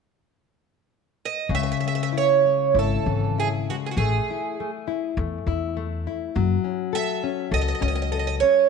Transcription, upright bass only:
1.49 1.70 C#2 medium
2.74 2.95 G#1 medium
3.06 3.66 G#1 medium
3.96 4.17 A1 medium
5.17 5.37 E2 medium
5.46 6.04 E2 medium
6.36 6.55 F#1 medium
7.51 7.71 C#2 medium
7.82 8.41 C#2 medium

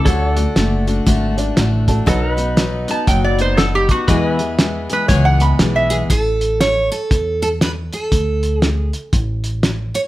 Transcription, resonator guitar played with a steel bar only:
0.00 0.16 A4 loud
2.91 3.07 A5 medium
3.08 3.24 G5 medium
3.24 3.41 D5 medium
3.41 3.58 C5 medium
3.57 3.74 A4 medium
3.75 3.91 G4 medium
3.91 4.18 F#4 loud
4.93 5.08 B4 medium
5.08 5.25 C#5 medium
5.25 5.42 F#5 loud
5.42 5.75 B5 medium
5.76 6.02 E5 medium

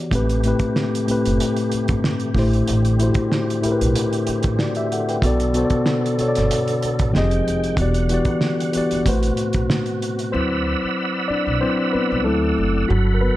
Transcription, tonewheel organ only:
0.11 2.32 C3 medium
0.11 2.32 A3 medium
0.11 5.18 G4 medium
2.34 5.19 D3 medium
2.34 5.19 C4 medium
5.22 7.12 D3 medium
5.22 7.12 B3 medium
5.22 7.12 A4 medium
7.14 7.77 D#3 medium
7.14 7.77 G#3 medium
7.14 7.77 G5 medium
7.76 9.03 D3 medium
7.76 9.03 G3 medium
7.76 9.03 F#5 medium
9.06 10.32 B2 medium
9.06 10.32 C3 medium
9.06 10.32 F#4 medium
10.33 12.86 D5 medium
10.33 12.23 F#5 medium
10.33 12.22 B5 medium
10.33 12.85 E6 medium
12.24 13.37 F#5 medium
12.88 13.37 A4 medium
12.88 13.37 B5 medium

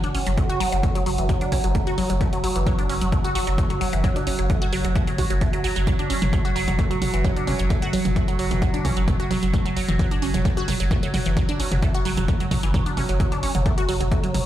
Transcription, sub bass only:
0.04 0.14 F#1 medium
0.26 0.37 F#1 medium
0.49 0.60 F#1 medium
0.72 0.83 F#1 medium
1.06 1.18 F#1 loud
1.18 1.29 F#1 medium
1.41 1.52 F#1 medium
1.64 1.75 F#1 medium
1.87 1.98 F#1 medium
2.10 2.20 F#1 medium
2.33 2.43 F#1 medium
2.55 2.66 F#1 medium
2.89 3.01 F#1 loud
3.01 3.12 F#1 medium
3.24 3.35 F#1 medium
3.47 3.58 F#1 medium
3.70 3.81 F#1 medium
3.93 4.04 F#1 medium
4.16 4.27 F#1 medium
4.39 4.49 F#1 medium
4.73 4.84 F#1 loud
4.85 4.95 F#1 medium
5.08 5.18 F#1 medium
5.30 5.41 F#1 medium
5.53 5.64 F#1 medium
5.76 5.87 F#1 medium
5.99 6.10 F#1 medium
6.22 6.33 F#1 medium
6.56 6.67 F#1 loud
6.68 6.78 F#1 medium
6.91 7.01 F#1 medium
7.13 7.24 F#1 medium
7.36 7.47 F#1 medium
7.59 7.70 F#1 medium
7.82 7.93 F#1 medium
8.05 8.16 F#1 medium
8.39 8.50 F#1 loud
8.51 8.62 F#1 medium
8.74 8.85 F#1 medium
8.97 9.07 F#1 medium
9.20 9.30 F#1 medium
9.43 9.53 F#1 medium
9.65 9.76 F#1 medium
9.88 9.99 F#1 medium
10.22 10.33 F#1 loud
10.34 10.45 F#1 medium
10.57 10.68 F#1 medium
10.80 10.91 F#1 medium
11.03 11.14 F#1 medium
11.26 11.36 F#1 medium
11.49 11.59 F#1 medium
11.72 11.82 F#1 medium
12.05 12.17 F#1 loud
12.17 12.28 F#1 medium
12.40 12.51 F#1 medium
12.63 12.74 F#1 medium
12.86 12.97 F#1 medium
13.09 13.20 F#1 medium
13.32 13.43 F#1 medium
13.55 13.65 F#1 medium
13.89 14.00 F#1 loud
14.01 14.11 F#1 medium
14.23 14.34 F#1 medium

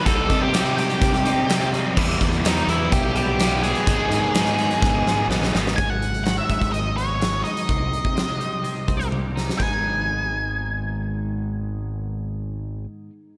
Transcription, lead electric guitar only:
0.06 0.39 A4 medium
0.06 0.43 A5 loud
0.42 0.75 G4 medium
0.42 0.78 G5 loud
0.78 1.69 G4 medium
0.78 1.69 G5 loud
2.46 2.67 D#4 medium
2.46 2.68 D#5 medium
2.70 2.91 E4 medium
2.70 2.93 E5 loud
2.92 3.14 G4 medium
2.92 3.14 G5 loud
3.16 3.60 G4 medium
3.16 3.60 G5 loud
3.63 5.26 G#4 medium
3.63 5.26 G#5 medium
5.76 5.90 G#5 loud
5.90 6.23 F#5 loud
6.24 6.36 F#5 medium
6.38 6.72 E5 medium
6.72 6.96 D#5 medium
6.97 7.43 C#5 medium
7.44 9.07 D#5 medium
9.58 12.84 G#5 medium

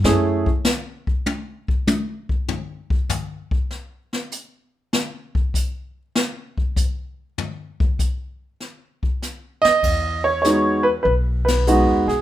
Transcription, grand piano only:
0.05 0.47 A3 medium
0.05 0.47 C#4 medium
0.05 0.47 E4 medium
0.05 0.47 G#4 medium
9.62 10.20 D#5 loud
10.24 10.40 C#5 medium
10.42 10.82 G#3 medium
10.42 10.83 B3 medium
10.42 10.83 D#4 medium
10.42 10.82 C#5 medium
10.46 10.83 F#4 medium
10.83 10.88 B4 medium
11.03 11.13 B4 medium
11.45 12.04 B4 medium
11.67 12.05 G#3 medium
11.67 12.05 B3 medium
11.67 12.06 D#4 medium
11.67 12.06 F#4 medium
12.08 12.21 G#4 medium

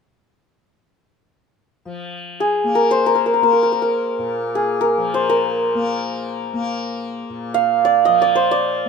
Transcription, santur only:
2.40 4.55 G#4 medium
2.75 3.06 A#4 medium
2.91 5.14 C5 medium
3.06 3.15 A#4 medium
3.15 3.25 A#4 soft
3.26 3.33 A#4 medium
3.34 3.43 A#4 soft
3.43 3.52 A#4 soft
3.53 3.62 A#4 soft
3.63 3.72 A#4 soft
3.72 3.82 A#4 soft
3.82 4.80 A#4 soft
4.55 7.59 G#4 medium
4.81 5.29 A#4 medium
5.14 7.78 C5 medium
5.29 8.12 A#4 medium
7.54 8.89 F5 medium
7.85 8.11 D5 medium
8.05 8.28 D#5 medium
8.22 8.51 D5 medium
8.35 8.89 C5 medium
8.51 8.89 D5 medium

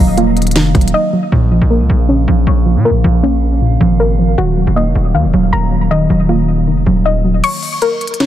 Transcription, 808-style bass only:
0.00 0.57 D#1 loud
0.56 0.74 F1 loud
0.75 0.93 D#1 loud
1.32 1.60 A#1 loud
1.61 1.82 A#1 loud
1.81 1.89 C#2 loud
1.90 2.26 A#1 loud
2.28 2.46 A#1 loud
2.47 2.78 A#1 loud
2.76 2.92 A#2 loud
2.90 3.03 A#1 loud
3.04 3.78 A#1 loud
3.81 4.36 G#1 loud
4.38 4.66 D#1 loud
4.67 4.88 D#1 loud
4.86 4.95 F1 loud
4.95 5.16 D#1 loud
5.14 5.26 D#2 medium
5.25 5.33 D#1 medium
5.33 5.52 D#1 loud
5.53 6.08 D#1 loud
6.10 6.69 D#1 loud
6.67 6.85 F1 medium
6.86 7.41 D#1 loud

